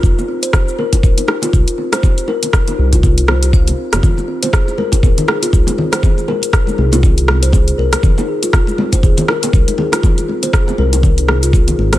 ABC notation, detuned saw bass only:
X:1
M:4/4
L:1/16
Q:"Swing 16ths" 1/4=120
K:Fm
V:1 name="Detuned saw bass" clef=bass
F,,, z6 z E,,, z3 C,, z3 | z6 C,,6- C,, z2 F,,, | F,,, z6 z E,,, z3 C,, z3 | z6 C,,6- C,, z C,, z |
F,,, z6 z E,,, z3 C,, z3 | z6 C,,6- C,, z A,,, z |]